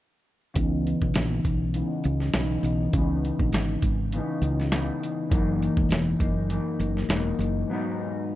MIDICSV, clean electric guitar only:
0, 0, Header, 1, 2, 480
1, 0, Start_track
1, 0, Tempo, 594295
1, 450, Time_signature, 4, 2, 24, 8
1, 6747, End_track
2, 0, Start_track
2, 0, Title_t, "Clean electric guitar"
2, 0, Program_c, 0, 27
2, 438, Note_on_c, 0, 49, 74
2, 454, Note_on_c, 0, 52, 67
2, 467, Note_on_c, 0, 59, 81
2, 475, Note_on_c, 0, 63, 69
2, 1392, Note_off_c, 0, 49, 0
2, 1401, Note_on_c, 0, 49, 47
2, 1408, Note_off_c, 0, 59, 0
2, 1414, Note_off_c, 0, 52, 0
2, 1417, Note_on_c, 0, 52, 55
2, 1418, Note_on_c, 0, 59, 60
2, 1424, Note_off_c, 0, 63, 0
2, 1427, Note_on_c, 0, 63, 51
2, 1877, Note_off_c, 0, 49, 0
2, 1887, Note_on_c, 0, 49, 55
2, 1892, Note_off_c, 0, 52, 0
2, 1894, Note_off_c, 0, 59, 0
2, 1895, Note_on_c, 0, 52, 57
2, 1905, Note_off_c, 0, 63, 0
2, 1907, Note_on_c, 0, 59, 59
2, 1909, Note_on_c, 0, 63, 63
2, 2360, Note_off_c, 0, 49, 0
2, 2369, Note_on_c, 0, 49, 63
2, 2378, Note_off_c, 0, 59, 0
2, 2385, Note_off_c, 0, 52, 0
2, 2388, Note_on_c, 0, 52, 65
2, 2394, Note_off_c, 0, 63, 0
2, 2405, Note_on_c, 0, 59, 64
2, 2408, Note_on_c, 0, 63, 67
2, 3329, Note_off_c, 0, 49, 0
2, 3338, Note_on_c, 0, 49, 48
2, 3339, Note_off_c, 0, 52, 0
2, 3343, Note_on_c, 0, 52, 51
2, 3344, Note_off_c, 0, 59, 0
2, 3354, Note_on_c, 0, 59, 55
2, 3363, Note_off_c, 0, 63, 0
2, 3366, Note_on_c, 0, 63, 56
2, 3796, Note_off_c, 0, 49, 0
2, 3805, Note_on_c, 0, 49, 58
2, 3812, Note_off_c, 0, 52, 0
2, 3815, Note_on_c, 0, 52, 64
2, 3816, Note_off_c, 0, 59, 0
2, 3826, Note_on_c, 0, 59, 61
2, 3829, Note_off_c, 0, 63, 0
2, 3835, Note_on_c, 0, 63, 67
2, 4276, Note_on_c, 0, 42, 73
2, 4281, Note_off_c, 0, 52, 0
2, 4284, Note_on_c, 0, 52, 75
2, 4287, Note_off_c, 0, 49, 0
2, 4288, Note_off_c, 0, 59, 0
2, 4292, Note_on_c, 0, 58, 73
2, 4293, Note_off_c, 0, 63, 0
2, 4296, Note_on_c, 0, 63, 75
2, 4993, Note_off_c, 0, 63, 0
2, 4997, Note_on_c, 0, 63, 41
2, 5000, Note_off_c, 0, 58, 0
2, 5002, Note_off_c, 0, 42, 0
2, 5007, Note_off_c, 0, 52, 0
2, 5010, Note_on_c, 0, 58, 40
2, 5019, Note_on_c, 0, 52, 34
2, 5232, Note_off_c, 0, 52, 0
2, 5235, Note_on_c, 0, 42, 56
2, 5240, Note_off_c, 0, 58, 0
2, 5242, Note_on_c, 0, 52, 58
2, 5243, Note_off_c, 0, 63, 0
2, 5250, Note_on_c, 0, 58, 55
2, 5259, Note_on_c, 0, 63, 54
2, 5718, Note_off_c, 0, 42, 0
2, 5721, Note_off_c, 0, 52, 0
2, 5727, Note_on_c, 0, 42, 58
2, 5729, Note_off_c, 0, 58, 0
2, 5731, Note_on_c, 0, 52, 58
2, 5745, Note_on_c, 0, 58, 60
2, 5750, Note_off_c, 0, 63, 0
2, 5753, Note_on_c, 0, 63, 66
2, 6195, Note_off_c, 0, 42, 0
2, 6198, Note_on_c, 0, 44, 65
2, 6210, Note_off_c, 0, 52, 0
2, 6217, Note_off_c, 0, 58, 0
2, 6218, Note_on_c, 0, 54, 72
2, 6228, Note_on_c, 0, 59, 73
2, 6238, Note_off_c, 0, 63, 0
2, 6242, Note_on_c, 0, 63, 77
2, 6747, Note_off_c, 0, 44, 0
2, 6747, Note_off_c, 0, 54, 0
2, 6747, Note_off_c, 0, 59, 0
2, 6747, Note_off_c, 0, 63, 0
2, 6747, End_track
0, 0, End_of_file